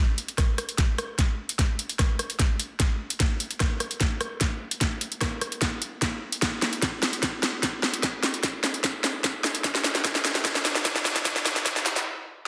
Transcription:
0.18 closed hi-hat medium
0.28 closed hi-hat soft
0.38 kick loud
0.38 cross-stick medium
0.38 snare soft
0.38 closed hi-hat medium
0.58 cross-stick medium
0.58 closed hi-hat medium
0.69 closed hi-hat soft
0.78 kick medium
0.78 snare medium
0.78 closed hi-hat medium
0.98 cross-stick medium
0.98 closed hi-hat medium
1.19 kick medium
1.19 snare medium
1.19 closed hi-hat medium
1.49 closed hi-hat medium
1.59 kick loud
1.59 snare medium
1.59 closed hi-hat medium
1.79 closed hi-hat medium
1.89 closed hi-hat soft
1.99 kick loud
1.99 cross-stick medium
1.99 snare medium
1.99 closed hi-hat medium
2.19 cross-stick soft
2.19 closed hi-hat medium
2.30 closed hi-hat soft
2.39 kick medium
2.39 snare medium
2.39 closed hi-hat medium
2.60 closed hi-hat medium
2.80 kick loud
2.80 snare medium
2.80 closed hi-hat medium
3.10 closed hi-hat medium
3.20 kick loud
3.20 snare medium
3.20 closed hi-hat medium
3.40 closed hi-hat medium
3.51 closed hi-hat soft
3.60 kick loud
3.60 cross-stick medium
3.60 snare medium
3.60 closed hi-hat medium
3.80 cross-stick soft
3.80 closed hi-hat medium
3.91 closed hi-hat soft
4.00 kick loud
4.00 snare medium
4.00 closed hi-hat medium
4.21 cross-stick medium
4.21 closed hi-hat medium
4.41 kick loud
4.41 snare medium
4.41 closed hi-hat medium
4.71 closed hi-hat medium
4.81 kick loud
4.81 snare medium
4.81 closed hi-hat medium
5.01 closed hi-hat medium
5.12 closed hi-hat soft
5.21 kick loud
5.21 cross-stick medium
5.21 snare medium
5.21 closed hi-hat medium
5.41 cross-stick medium
5.41 closed hi-hat soft
5.52 closed hi-hat soft
5.62 kick medium
5.62 snare medium
5.62 closed hi-hat medium
5.82 closed hi-hat medium
6.02 kick loud
6.02 snare medium
6.02 closed hi-hat medium
6.32 closed hi-hat medium
6.42 kick loud
6.42 snare medium
6.42 closed hi-hat medium
6.62 snare medium
6.62 closed hi-hat soft
6.73 closed hi-hat soft
6.82 kick loud
6.82 snare medium
6.82 closed hi-hat medium
7.03 snare medium
7.03 closed hi-hat medium
7.13 closed hi-hat soft
7.23 kick loud
7.23 snare medium
7.23 closed hi-hat medium
7.43 snare medium
7.43 closed hi-hat soft
7.63 kick loud
7.63 snare medium
7.63 closed hi-hat medium
7.83 snare medium
7.94 closed hi-hat medium
8.03 kick loud
8.03 snare medium
8.03 closed hi-hat medium
8.23 snare medium
8.23 closed hi-hat medium
8.34 closed hi-hat soft
8.43 kick loud
8.43 snare medium
8.43 closed hi-hat medium
8.64 snare medium
8.64 closed hi-hat medium
8.74 closed hi-hat soft
8.84 kick loud
8.84 snare medium
8.84 closed hi-hat medium
9.04 snare medium
9.04 closed hi-hat medium
9.24 kick loud
9.24 snare medium
9.24 closed hi-hat medium
9.44 snare medium
9.55 closed hi-hat medium
9.64 kick loud
9.64 snare medium
9.64 closed hi-hat medium
9.75 snare medium
9.84 snare loud
9.84 closed hi-hat medium
9.95 snare medium
9.95 closed hi-hat soft
10.04 kick loud
10.04 snare medium
10.04 closed hi-hat medium
10.15 snare medium
10.25 snare loud
10.25 closed hi-hat medium
10.35 snare medium
10.35 closed hi-hat soft
10.45 kick loud
10.45 snare loud
10.45 closed hi-hat medium
10.55 snare medium
10.65 snare medium
10.65 closed hi-hat medium
10.75 snare medium
10.85 kick loud
10.85 snare loud
10.85 closed hi-hat medium
10.96 snare medium
11.05 snare loud
11.16 snare medium
11.16 closed hi-hat medium
11.25 kick loud
11.25 snare loud
11.25 closed hi-hat medium
11.36 snare medium
11.46 snare loud
11.46 closed hi-hat medium
11.56 snare medium
11.56 closed hi-hat soft
11.66 kick loud
11.66 snare loud
11.66 closed hi-hat medium
11.76 snare medium
11.86 snare loud
11.86 closed hi-hat medium
11.96 snare medium
11.96 closed hi-hat soft

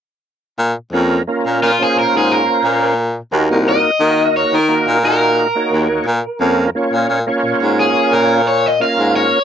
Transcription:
0.59 0.73 A#2 medium
0.93 1.19 F2 medium
0.93 1.22 A#3 medium
0.93 1.22 C#4 medium
0.93 1.23 F4 medium
0.93 1.23 A#4 medium
1.27 1.71 A#3 medium
1.27 1.72 C#4 medium
1.27 1.72 F4 medium
1.27 1.72 A#4 medium
1.46 1.58 A#2 medium
1.62 1.76 A#2 medium
1.62 1.82 F4 medium
1.79 2.93 A#3 medium
1.79 2.94 C#4 medium
1.79 2.94 F4 medium
1.79 1.97 G#4 medium
1.79 2.94 C5 medium
1.97 2.06 A#2 soft
1.97 2.15 A#4 medium
2.15 2.41 G#2 medium
2.15 2.31 G#4 medium
2.31 2.97 A#4 medium
2.64 3.16 A#2 medium
3.32 3.46 D#2 medium
3.32 3.91 A#3 medium
3.32 3.91 D#4 medium
3.32 3.91 F#4 medium
3.32 3.91 A#4 medium
3.51 3.77 C2 medium
3.69 4.34 D#5 medium
4.00 4.27 D#3 medium
4.00 4.59 A#3 medium
4.00 4.59 D#4 medium
4.00 4.59 F#4 medium
4.00 4.60 A#4 medium
4.35 4.44 D#2 soft
4.35 4.55 C#5 medium
4.53 4.79 D#3 medium
4.53 5.03 A#4 medium
4.69 4.98 A#3 medium
4.69 4.98 D#4 medium
4.69 4.99 F#4 medium
4.69 4.99 A#4 medium
4.88 5.46 A#2 medium
5.03 5.47 A#3 medium
5.03 5.47 D#4 medium
5.03 5.48 F#4 medium
5.03 5.48 A#4 medium
5.03 7.06 A#4 medium
5.55 6.06 A#3 medium
5.55 6.06 D#4 medium
5.55 6.06 F#4 medium
5.55 6.07 C#5 medium
5.72 5.86 D#2 medium
5.90 5.98 D#2 soft
6.06 6.20 A#2 medium
6.40 6.67 F2 medium
6.40 6.70 A#3 medium
6.40 6.70 C#4 medium
6.40 6.70 F4 medium
6.40 6.70 A#4 medium
6.75 7.19 A#3 medium
6.75 7.19 C#4 medium
6.75 7.19 F4 medium
6.75 7.20 C#5 medium
6.93 7.05 A#2 medium
7.09 7.23 A#2 medium
7.27 8.41 A#3 medium
7.27 8.42 C#4 medium
7.27 8.42 F4 medium
7.27 8.42 C#5 loud
7.44 7.53 A#2 soft
7.62 7.88 G#2 medium
7.80 8.12 G#4 medium
8.12 8.78 A#2 medium
8.12 8.46 A#4 medium
8.48 8.66 C#5 medium
8.66 8.81 D#5 medium
8.80 9.39 A#3 medium
8.80 9.39 C#4 medium
8.80 9.39 F4 medium
8.80 9.39 A#4 medium
8.80 9.15 F5 medium
8.99 9.25 G#2 medium
9.16 9.44 C#5 loud

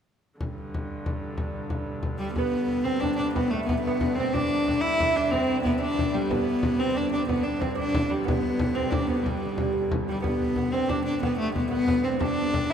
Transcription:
0.40 2.38 G2 medium
0.40 2.38 D3 medium
0.40 frame drum medium
0.58 frame drum soft
0.74 frame drum medium
1.06 frame drum medium
1.23 frame drum soft
1.38 frame drum medium
1.54 frame drum soft
1.70 frame drum medium
2.03 frame drum medium
2.18 2.33 G3 medium
2.18 2.38 G3 medium
2.18 frame drum soft
2.34 2.86 B3 medium
2.34 frame drum medium
2.38 6.31 G2 medium
2.38 6.31 D3 medium
2.38 2.85 B3 medium
2.54 frame drum soft
2.85 3.02 C4 medium
2.85 3.01 C4 medium
3.00 3.16 D4 medium
3.00 3.18 D4 medium
3.00 frame drum medium
3.16 3.33 D4 medium
3.16 3.36 D4 medium
3.16 frame drum soft
3.34 3.52 B3 medium
3.34 frame drum medium
3.51 3.65 A3 medium
3.51 3.69 A3 medium
3.51 frame drum soft
3.66 3.80 B3 medium
3.66 3.86 B3 medium
3.66 frame drum medium
3.81 4.17 B3 medium
3.87 4.19 B3 medium
4.01 frame drum medium
4.16 4.36 C4 medium
4.16 4.35 C4 medium
4.16 frame drum soft
4.34 4.83 D4 loud
4.34 4.67 D4 medium
4.34 frame drum medium
4.53 frame drum soft
4.68 4.83 D4 medium
4.68 frame drum medium
4.81 5.18 E4 loud
4.81 4.99 E4 medium
5.00 5.15 E4 medium
5.00 frame drum medium
5.16 5.33 D4 medium
5.16 frame drum soft
5.31 5.63 C4 medium
5.31 5.65 C4 medium
5.31 frame drum medium
5.63 5.79 B3 medium
5.63 5.82 B3 medium
5.63 frame drum medium
5.80 6.15 D4 medium
5.80 6.16 D4 medium
5.80 frame drum soft
5.99 frame drum medium
6.14 6.33 G3 medium
6.14 6.31 G3 medium
6.30 10.26 G2 medium
6.30 10.25 D3 medium
6.30 6.79 B3 medium
6.30 6.81 B3 medium
6.30 frame drum medium
6.48 frame drum soft
6.63 frame drum medium
6.79 6.96 C4 medium
6.79 6.98 C4 medium
6.94 7.12 D4 medium
7.12 7.28 D4 medium
7.12 7.30 D4 medium
7.12 frame drum soft
7.28 7.45 B3 medium
7.28 7.46 B3 medium
7.28 frame drum medium
7.43 7.61 D4 medium
7.43 7.62 D4 medium
7.43 frame drum soft
7.60 7.78 C4 medium
7.60 frame drum medium
7.75 8.10 D4 medium
7.75 8.12 D4 medium
7.94 frame drum medium
8.10 8.27 G3 medium
8.10 8.28 G3 medium
8.10 frame drum soft
8.25 8.74 B3 medium
8.25 8.77 B3 medium
8.25 frame drum medium
8.44 frame drum soft
8.59 frame drum medium
8.75 8.92 C4 medium
8.91 9.09 D4 medium
8.91 frame drum medium
9.07 9.25 B3 medium
9.07 9.26 B3 medium
9.07 frame drum soft
9.23 9.90 G3 medium
9.23 9.87 G3 soft
9.23 frame drum medium
9.41 frame drum soft
9.58 frame drum medium
9.91 frame drum medium
10.09 10.25 G3 medium
10.09 10.23 G3 medium
10.22 12.73 G2 medium
10.22 12.73 D3 medium
10.22 10.56 B3 medium
10.22 10.74 B3 medium
10.22 frame drum medium
10.40 frame drum soft
10.56 10.73 B3 medium
10.56 frame drum medium
10.72 10.91 C4 medium
10.72 10.90 C4 medium
10.89 11.05 D4 medium
10.89 11.24 D4 medium
10.89 frame drum medium
11.06 11.21 D4 medium
11.06 frame drum soft
11.23 11.70 B3 medium
11.23 11.38 B3 medium
11.23 frame drum medium
11.39 11.54 A3 medium
11.39 frame drum soft
11.56 11.71 B3 medium
11.56 frame drum medium
11.71 11.86 B3 medium
11.71 12.06 B3 loud
11.88 12.03 B3 medium
11.88 frame drum medium
12.04 12.21 C4 medium
12.04 frame drum soft
12.20 12.52 D4 medium
12.20 12.72 D4 medium
12.20 frame drum medium
12.38 frame drum soft
12.53 12.69 D4 medium
12.53 frame drum medium
12.69 12.73 E4 medium

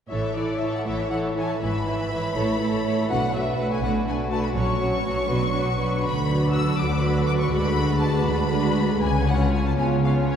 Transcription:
0.10 0.75 A1 medium
0.10 0.76 A2 medium
0.10 0.35 E3 soft
0.10 0.35 E4 soft
0.10 0.36 A4 soft
0.10 0.36 C#5 soft
0.10 0.35 E5 medium
0.35 0.61 E3 soft
0.35 0.61 E4 soft
0.35 0.61 A4 soft
0.35 0.61 C#5 soft
0.35 0.61 D5 medium
0.60 0.86 E3 soft
0.60 0.86 E4 soft
0.60 0.86 A4 soft
0.60 0.86 C#5 soft
0.60 0.73 E5 medium
0.76 0.80 F#5 soft
0.86 1.50 A1 soft
0.86 1.50 A2 medium
0.86 1.11 E3 soft
0.86 1.11 E4 soft
0.86 1.11 A4 soft
0.86 1.12 C#5 soft
0.86 1.11 E5 medium
1.11 1.36 E3 soft
1.11 1.36 E4 soft
1.11 1.36 A4 soft
1.11 1.37 C#5 soft
1.11 1.19 F#5 soft
1.37 1.60 E3 soft
1.37 1.60 E4 soft
1.37 1.61 A4 soft
1.37 1.62 C#5 soft
1.37 1.49 G#5 medium
1.50 1.62 A5 soft
1.60 2.24 G#1 medium
1.60 2.25 G#2 medium
1.60 1.86 E3 soft
1.60 1.85 E4 soft
1.60 1.86 B4 soft
1.60 1.86 E5 soft
1.60 3.07 B5 medium
1.87 2.10 E3 soft
1.87 2.10 E4 soft
1.87 2.11 B4 soft
1.87 2.11 E5 soft
2.11 2.36 E3 soft
2.11 2.33 E4 soft
2.11 2.36 B4 soft
2.11 2.36 E5 soft
2.35 2.99 A1 medium
2.35 2.99 A2 soft
2.35 2.60 A3 soft
2.35 2.59 E4 soft
2.35 2.60 A4 soft
2.35 2.60 C#5 soft
2.61 2.84 A3 soft
2.61 2.84 E4 soft
2.61 2.85 A4 soft
2.61 2.85 C#5 soft
2.85 3.09 A3 soft
2.85 3.10 E4 soft
2.85 3.10 A4 soft
2.85 3.10 C#5 soft
3.09 3.72 B1 medium
3.09 3.72 B2 medium
3.09 3.34 A3 soft
3.09 3.34 D4 soft
3.09 3.34 F#4 soft
3.09 3.34 B4 soft
3.09 3.34 F#5 medium
3.34 3.59 A3 soft
3.34 3.58 D4 soft
3.34 3.58 F#4 soft
3.34 3.57 B4 soft
3.34 3.59 E5 medium
3.59 3.83 A3 soft
3.59 3.83 D4 soft
3.59 3.83 F#4 soft
3.59 3.83 B4 soft
3.59 3.72 F#5 medium
3.72 3.83 G#5 medium
3.82 4.44 B1 medium
3.82 4.44 B2 medium
3.82 4.06 A3 soft
3.82 4.07 D4 soft
3.82 4.07 F#4 soft
3.82 4.07 B4 soft
3.82 3.91 F#5 medium
4.08 4.30 A3 soft
4.08 4.30 D4 soft
4.08 4.30 F#4 soft
4.08 4.30 B4 soft
4.08 4.16 G#5 medium
4.31 4.55 A3 soft
4.31 4.55 D4 soft
4.31 4.54 F#4 soft
4.31 4.55 B4 soft
4.31 4.43 A5 medium
4.43 4.48 B5 medium
4.55 5.18 A#1 medium
4.55 5.18 A#2 medium
4.55 4.78 F#3 soft
4.55 4.79 C#4 soft
4.55 4.79 F#4 soft
4.55 4.80 C#5 soft
4.55 6.01 C#6 medium
4.80 5.04 F#3 soft
4.80 5.03 C#4 soft
4.80 5.05 F#4 soft
4.80 5.04 C#5 soft
5.05 5.29 F#3 soft
5.05 5.29 C#4 soft
5.05 5.30 F#4 soft
5.05 5.30 C#5 soft
5.29 5.93 B1 medium
5.29 5.93 B2 medium
5.29 5.53 F#3 soft
5.29 5.52 D4 soft
5.29 5.54 F#4 soft
5.29 5.54 B4 soft
5.54 5.78 F#3 soft
5.54 5.78 D4 soft
5.54 5.78 F#4 soft
5.54 5.78 B4 soft
5.79 6.04 F#3 soft
5.79 6.04 D4 soft
5.79 6.04 F#4 soft
5.79 6.04 B4 soft
6.03 6.69 D2 medium
6.03 6.70 D3 medium
6.03 6.52 B5 medium
6.27 7.00 F#3 soft
6.27 7.00 D4 soft
6.27 7.01 F#4 soft
6.27 7.01 B4 soft
6.52 6.77 E6 medium
6.78 7.43 D2 medium
6.78 7.43 D3 medium
6.78 7.03 D6 medium
7.00 7.51 F#3 soft
7.00 7.51 D4 soft
7.00 7.49 F#4 medium
7.00 7.50 B4 medium
7.00 7.26 B5 medium
7.26 7.32 D6 medium
7.39 7.52 C#6 medium
7.50 8.17 D2 medium
7.50 8.17 D3 medium
7.50 7.76 G#3 soft
7.50 7.76 D4 soft
7.50 7.74 F#4 soft
7.50 7.74 B4 soft
7.50 7.99 B5 medium
7.75 8.50 G#3 soft
7.75 8.50 D4 soft
7.75 8.49 F#4 soft
7.75 8.49 B4 soft
7.99 8.24 A5 medium
8.23 8.92 D2 medium
8.23 8.92 D3 medium
8.23 9.00 B5 medium
8.51 9.00 G#3 soft
8.51 9.00 D4 medium
8.51 9.00 F#4 medium
8.51 9.01 B4 medium
9.00 9.68 C#2 medium
9.00 9.69 C#3 medium
9.00 9.26 G#5 medium
9.26 9.77 G#3 soft
9.26 9.77 C#4 soft
9.26 9.77 F4 soft
9.26 9.78 C#5 soft
9.26 9.52 F#5 medium
9.52 9.65 G#5 medium
9.66 9.71 A5 medium
9.77 10.36 C#2 medium
9.77 10.36 C#3 medium
9.77 10.03 B3 soft
9.77 10.02 C#4 soft
9.77 10.04 F4 soft
9.77 10.03 C#5 soft
9.77 9.86 G#5 medium
10.03 10.36 B3 soft
10.03 10.36 C#4 soft
10.03 10.36 F4 soft
10.03 10.36 C#5 soft
10.03 10.13 F5 medium
10.30 10.36 C#5 medium

